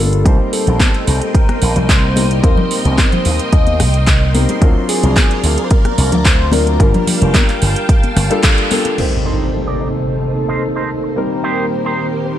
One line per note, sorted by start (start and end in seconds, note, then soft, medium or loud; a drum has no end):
0.00 0.23 G1 medium
0.00 0.22 G3 medium
0.00 0.22 A#3 medium
0.00 0.23 D4 medium
0.00 0.23 F4 medium
0.00 0.23 A4 medium
0.13 closed hi-hat soft
0.25 0.38 C2 medium
0.25 2.13 G3 medium
0.25 2.13 A#3 medium
0.25 4.58 A#3 medium
0.25 2.14 C4 medium
0.25 2.14 D#4 medium
0.25 2.14 C5 loud
0.25 4.58 D#5 medium
0.25 2.42 G5 medium
0.25 6.76 C6 medium
0.25 kick loud
0.25 closed hi-hat medium
0.53 1.36 A4 medium
0.53 open hi-hat loud
0.67 0.78 A#1 medium
0.67 closed hi-hat soft
0.67 muted conga soft
0.80 kick loud
0.80 cross-stick medium
0.80 clap loud
0.80 closed hi-hat medium
0.80 high conga medium
0.94 closed hi-hat soft
1.07 1.20 C2 medium
1.07 open hi-hat medium
1.22 closed hi-hat soft
1.35 1.89 A#4 medium
1.35 kick loud
1.35 closed hi-hat medium
1.49 cross-stick medium
1.49 closed hi-hat soft
1.49 high conga medium
1.62 1.74 A#1 medium
1.62 open hi-hat loud
1.76 2.41 C2 medium
1.76 closed hi-hat medium
1.76 muted conga soft
1.76 low conga medium
1.89 2.40 C5 loud
1.89 kick loud
1.89 clap loud
1.89 closed hi-hat medium
2.16 2.41 G3 medium
2.16 2.41 A#3 medium
2.16 2.41 C4 medium
2.16 2.41 D#4 medium
2.16 2.41 A#4 medium
2.16 open hi-hat medium
2.16 muted conga medium
2.16 high conga medium
2.31 closed hi-hat soft
2.42 2.56 D#2 loud
2.42 4.31 G3 medium
2.42 4.31 A#3 medium
2.42 4.32 C4 medium
2.42 4.32 D#4 medium
2.42 4.32 A#4 loud
2.42 2.95 C5 loud
2.42 4.60 G5 medium
2.42 kick loud
2.42 closed hi-hat medium
2.57 low conga medium
2.71 open hi-hat loud
2.85 2.96 C2 medium
2.85 closed hi-hat medium
2.85 muted conga soft
2.98 3.49 C5 medium
2.98 kick loud
2.98 cross-stick medium
2.98 clap loud
2.98 closed hi-hat medium
2.98 high conga medium
3.12 closed hi-hat soft
3.12 low conga medium
3.25 3.38 D#2 medium
3.25 open hi-hat medium
3.39 closed hi-hat soft
3.52 3.82 D#2 loud
3.52 4.31 D#5 loud
3.52 kick loud
3.52 closed hi-hat medium
3.67 closed hi-hat soft
3.67 high conga medium
3.80 4.46 C2 medium
3.80 cross-stick medium
3.80 open hi-hat medium
3.80 muted conga medium
3.94 closed hi-hat soft
4.07 kick loud
4.07 clap loud
4.07 closed hi-hat medium
4.34 4.59 G3 medium
4.34 4.59 A#3 medium
4.34 4.59 C4 medium
4.34 4.59 D#4 medium
4.34 4.59 A#4 medium
4.34 open hi-hat medium
4.34 high conga medium
4.49 closed hi-hat soft
4.49 muted conga medium
4.61 4.74 D2 medium
4.61 6.49 F#3 medium
4.61 6.50 C4 medium
4.61 6.50 D4 medium
4.61 6.50 F4 medium
4.61 6.78 A#4 medium
4.61 6.50 A#4 loud
4.61 6.78 D5 medium
4.61 kick loud
4.61 closed hi-hat medium
4.89 5.65 G#4 loud
4.89 open hi-hat loud
5.03 5.15 C2 medium
5.03 closed hi-hat medium
5.03 muted conga soft
5.16 kick loud
5.16 cross-stick medium
5.16 clap loud
5.16 closed hi-hat medium
5.16 high conga medium
5.31 closed hi-hat soft
5.44 5.56 D2 medium
5.44 open hi-hat medium
5.58 closed hi-hat medium
5.64 5.72 C5 medium
5.70 6.26 A#4 loud
5.70 kick loud
5.70 closed hi-hat medium
5.85 cross-stick medium
5.85 closed hi-hat soft
5.85 high conga medium
5.98 6.10 C2 medium
5.98 open hi-hat medium
6.12 6.77 D2 medium
6.12 closed hi-hat soft
6.12 muted conga medium
6.12 low conga medium
6.24 6.53 C5 loud
6.24 kick medium
6.24 clap loud
6.24 closed hi-hat medium
6.52 6.77 F#3 medium
6.52 6.77 C4 medium
6.52 6.77 D4 medium
6.52 6.77 F4 medium
6.52 8.43 A#4 loud
6.52 6.77 A#4 medium
6.52 open hi-hat medium
6.52 muted conga medium
6.52 high conga medium
6.67 closed hi-hat soft
6.79 6.92 G1 loud
6.79 8.28 G3 medium
6.79 8.28 A#3 medium
6.79 8.28 D4 medium
6.79 8.28 F4 medium
6.79 8.29 A#4 loud
6.79 8.96 F5 medium
6.79 8.96 G5 medium
6.79 8.96 A5 medium
6.79 kick loud
6.79 closed hi-hat medium
6.94 closed hi-hat soft
6.94 low conga medium
7.07 open hi-hat loud
7.07 low conga medium
7.22 7.33 F1 medium
7.22 closed hi-hat medium
7.22 muted conga medium
7.34 kick medium
7.34 cross-stick medium
7.34 clap loud
7.34 closed hi-hat medium
7.34 high conga medium
7.49 clap soft
7.49 closed hi-hat soft
7.62 7.74 G1 medium
7.62 open hi-hat medium
7.76 closed hi-hat soft
7.89 kick loud
7.89 closed hi-hat medium
8.03 closed hi-hat soft
8.03 high conga medium
8.16 8.29 G1 medium
8.16 cross-stick medium
8.16 open hi-hat medium
8.16 muted conga medium
8.30 8.68 G3 medium
8.30 8.68 A#3 medium
8.30 8.68 D4 medium
8.30 8.68 F4 medium
8.30 8.68 A4 loud
8.30 closed hi-hat medium
8.43 kick loud
8.43 clap loud
8.43 closed hi-hat medium
8.58 closed hi-hat soft
8.71 8.95 G3 medium
8.71 8.95 A#3 medium
8.71 8.95 D4 medium
8.71 8.96 F4 medium
8.71 8.96 A4 loud
8.71 open hi-hat medium
8.71 high conga medium
8.85 closed hi-hat medium
8.85 muted conga medium
8.97 11.14 C3 medium
8.97 11.13 G3 medium
8.97 11.13 A#3 medium
8.97 12.38 A#3 medium
8.97 11.14 C4 medium
8.97 11.14 D#4 medium
8.97 12.38 C5 medium
8.97 11.14 C5 medium
8.97 crash medium
8.97 impact medium
9.25 9.46 D#4 loud
9.25 9.46 A#4 medium
9.25 9.46 C5 loud
9.54 11.13 A4 medium
9.67 9.87 D#4 medium
9.67 9.87 A#4 medium
9.67 9.88 D5 medium
10.07 muted clean electric guitar stroke soft
10.48 10.62 D#4 loud
10.48 10.62 A#4 medium
10.48 10.62 C5 loud
10.76 10.89 D#4 medium
10.76 10.89 A#4 medium
10.76 10.89 C5 medium
11.03 muted clean electric guitar stroke soft
11.16 12.38 D#3 medium
11.16 12.38 G3 medium
11.16 12.38 A#3 medium
11.16 12.38 C4 medium
11.16 12.38 D#4 medium
11.16 12.38 G4 medium
11.16 12.27 A#4 loud
11.16 12.38 A#4 medium
11.43 11.64 D#4 loud
11.43 11.65 G4 loud
11.43 11.65 C5 loud
11.85 12.06 D#4 medium
11.85 12.06 G4 medium
11.85 12.06 C5 medium
12.25 12.38 C5 loud
12.25 muted clean electric guitar stroke soft